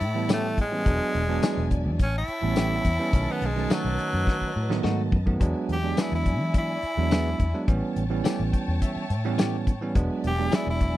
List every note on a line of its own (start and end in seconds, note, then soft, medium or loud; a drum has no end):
0.00 0.88 A2 medium
0.00 0.30 E4 medium
0.00 0.84 C#5 medium
0.00 0.84 G5 medium
0.00 0.84 A5 medium
0.00 closed hi-hat medium
0.15 0.62 E3 medium
0.15 0.62 G3 medium
0.15 0.62 B3 medium
0.15 0.62 E4 medium
0.29 0.47 E3 medium
0.29 0.47 A3 medium
0.29 0.59 A3 loud
0.29 0.47 C#4 medium
0.29 0.47 G4 medium
0.29 snare loud
0.29 closed hi-hat medium
0.29 tambourine loud
0.58 1.70 G#3 loud
0.58 kick medium
0.58 closed hi-hat medium
0.72 0.83 E3 medium
0.72 0.84 G3 medium
0.72 0.84 B3 medium
0.72 0.84 C#4 medium
0.85 0.98 E1 loud
0.85 1.21 F#3 medium
0.85 1.21 G#3 medium
0.85 1.21 B3 medium
0.85 1.22 D4 medium
0.85 1.98 D5 medium
0.85 1.98 E5 medium
0.85 1.98 G#5 medium
0.85 kick loud
0.85 closed hi-hat medium
1.14 1.39 E1 medium
1.14 closed hi-hat medium
1.28 2.00 F#3 medium
1.28 2.00 G#3 medium
1.28 2.00 B3 medium
1.28 2.00 D4 loud
1.28 snare soft
1.43 1.60 E3 medium
1.43 1.60 B3 medium
1.43 1.61 D4 loud
1.43 1.61 G#4 medium
1.43 snare loud
1.43 closed hi-hat medium
1.43 tambourine loud
1.57 1.87 E1 medium
1.71 kick medium
1.71 closed hi-hat medium
1.86 1.98 E2 medium
1.99 2.24 A1 loud
1.99 2.15 C#4 medium
1.99 3.12 C#5 medium
1.99 3.12 G5 medium
1.99 5.37 A5 medium
1.99 kick medium
1.99 closed hi-hat medium
2.18 3.33 E4 loud
2.28 muted fingered electric bass stroke soft
2.28 closed hi-hat medium
2.42 2.78 A1 medium
2.42 2.89 E3 medium
2.42 2.89 G3 medium
2.42 2.89 B3 medium
2.42 2.89 C#4 medium
2.56 2.74 E3 medium
2.56 2.74 A3 medium
2.56 2.74 C#4 medium
2.56 2.75 G4 medium
2.56 snare loud
2.56 closed hi-hat medium
2.56 tambourine loud
2.85 2.97 E2 loud
2.85 kick medium
2.85 closed hi-hat medium
2.99 3.11 E3 medium
2.99 3.11 G3 medium
2.99 3.11 B3 medium
2.99 3.11 C#4 loud
3.13 3.26 B1 loud
3.13 3.48 D#3 medium
3.13 3.48 F#3 medium
3.13 3.49 A3 medium
3.13 3.49 C#4 medium
3.13 5.38 B4 medium
3.13 5.39 D#5 medium
3.13 kick loud
3.13 closed hi-hat medium
3.32 3.47 B3 medium
3.42 3.66 B1 medium
3.42 closed hi-hat medium
3.46 3.75 G#3 medium
3.56 4.49 D#3 medium
3.56 4.50 F#3 medium
3.56 4.50 A3 medium
3.56 4.50 C#4 medium
3.56 snare soft
3.70 3.88 F#3 medium
3.70 4.82 F#3 loud
3.70 3.88 A3 medium
3.70 3.88 D#4 medium
3.70 3.88 F#4 medium
3.70 snare loud
3.70 closed hi-hat medium
3.70 tambourine loud
3.85 3.96 B1 medium
3.99 closed hi-hat medium
4.13 4.25 F#2 medium
4.27 kick medium
4.27 snare medium
4.41 muted fingered electric bass stroke soft
4.41 kick medium
4.56 4.81 A2 medium
4.69 5.16 D#3 medium
4.69 5.16 F#3 medium
4.69 5.16 A3 medium
4.69 5.17 B3 loud
4.69 snare medium
4.84 5.10 G#2 medium
4.84 5.01 F#3 medium
4.84 5.01 A3 medium
4.84 5.01 D#4 loud
4.84 5.02 F#4 medium
4.84 snare medium
5.12 5.38 F#2 medium
5.12 kick medium
5.26 5.38 D#3 medium
5.26 5.38 F#3 medium
5.26 5.38 A3 medium
5.26 5.38 B3 medium
5.26 kick medium
5.40 5.53 E2 medium
5.40 5.75 F#3 medium
5.40 5.76 G#3 medium
5.40 5.76 B3 medium
5.40 5.76 D4 loud
5.40 7.66 D5 medium
5.40 7.66 E5 medium
5.40 7.65 G#5 medium
5.40 kick loud
5.40 closed hi-hat medium
5.69 5.93 E2 medium
5.69 6.03 G4 medium
5.69 closed hi-hat medium
5.83 6.77 F#3 medium
5.83 6.77 G#3 medium
5.83 6.77 B3 medium
5.83 6.77 D4 medium
5.97 6.15 E3 medium
5.97 6.15 B3 medium
5.97 6.15 D4 medium
5.97 6.15 G#4 medium
5.97 snare loud
5.97 closed hi-hat medium
5.97 tambourine loud
6.01 6.13 E4 medium
6.12 6.40 E2 medium
6.12 6.55 E4 medium
6.26 kick medium
6.26 closed hi-hat medium
6.40 6.76 E3 medium
6.54 7.67 E4 loud
6.54 kick medium
6.54 closed hi-hat medium
6.82 muted fingered electric bass stroke soft
6.82 closed hi-hat medium
6.97 7.33 E2 medium
6.97 7.44 F#3 medium
6.97 7.44 G#3 medium
6.97 7.44 B3 medium
6.97 7.44 D4 medium
7.11 7.29 E3 medium
7.11 7.29 B3 medium
7.11 7.29 D4 medium
7.11 7.29 G#4 medium
7.11 snare loud
7.11 closed hi-hat medium
7.11 tambourine loud
7.39 7.52 E2 loud
7.39 kick medium
7.39 closed hi-hat medium
7.54 7.65 F#3 medium
7.54 7.66 G#3 medium
7.54 7.66 B3 medium
7.54 7.66 D4 medium
7.67 7.80 A1 loud
7.67 8.03 E3 medium
7.67 8.03 G3 medium
7.67 8.03 B3 medium
7.67 8.03 C#4 loud
7.67 9.93 C#5 medium
7.67 9.93 G5 medium
7.67 9.93 A5 medium
7.67 kick loud
7.67 closed hi-hat medium
7.96 8.20 A1 medium
7.96 closed hi-hat medium
8.10 9.04 E3 medium
8.10 9.04 G3 medium
8.10 9.04 B3 medium
8.10 9.04 C#4 loud
8.24 8.42 E3 medium
8.24 8.42 A3 loud
8.24 8.42 C#4 medium
8.24 8.43 G4 medium
8.24 snare loud
8.24 closed hi-hat medium
8.24 tambourine loud
8.39 8.51 A1 medium
8.53 8.80 G5 medium
8.53 kick medium
8.53 closed hi-hat medium
8.68 8.80 E2 medium
8.82 9.35 E5 medium
8.82 kick medium
8.82 closed hi-hat medium
8.96 muted fingered electric bass stroke soft
9.10 9.97 A2 medium
9.10 closed hi-hat medium
9.25 9.71 E3 medium
9.25 9.71 G3 medium
9.25 9.71 B3 medium
9.25 9.72 C#4 loud
9.38 9.56 E3 medium
9.38 9.56 A3 medium
9.38 9.56 C#4 medium
9.38 9.56 G4 loud
9.38 9.92 C#5 medium
9.38 snare loud
9.38 closed hi-hat medium
9.38 tambourine loud
9.67 kick medium
9.67 closed hi-hat medium
9.81 9.93 E3 medium
9.81 9.93 G3 medium
9.81 9.93 B3 medium
9.81 9.93 C#4 loud
9.95 10.07 E1 medium
9.95 10.30 F#3 medium
9.95 10.31 G#3 medium
9.95 10.31 B3 medium
9.95 10.31 D4 loud
9.95 10.97 D5 medium
9.95 10.97 E5 medium
9.95 10.97 G#5 medium
9.95 kick loud
9.95 closed hi-hat medium
10.24 10.48 E1 medium
10.24 10.57 G4 medium
10.24 closed hi-hat medium
10.38 10.97 F#3 medium
10.38 10.97 G#3 medium
10.38 10.97 B3 medium
10.38 10.97 D4 medium
10.38 snare soft
10.52 10.69 E3 medium
10.52 10.69 B3 medium
10.52 10.70 D4 medium
10.52 10.67 E4 medium
10.52 10.70 G#4 medium
10.52 snare loud
10.52 closed hi-hat medium
10.52 tambourine loud
10.67 10.95 E1 medium
10.67 10.97 E4 medium
10.81 kick medium
10.81 closed hi-hat medium